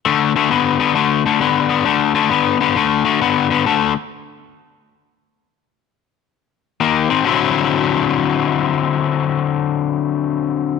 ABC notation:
X:1
M:4/4
L:1/8
Q:"Swing" 1/4=133
K:Dmix
V:1 name="Overdriven electric guitar" clef=bass
[D,A,] [D,A,] [D,B,] [D,B,] [D,A,] [D,A,] [D,B,] [D,B,] | [D,A,] [D,A,] [D,B,] [D,B,] [D,A,] [D,A,] [D,B,] [D,B,] | [D,A,] z6 z | z6 [_E,_B,] [E,C] |
[D,F,CE]8- | [D,F,CE]8 |]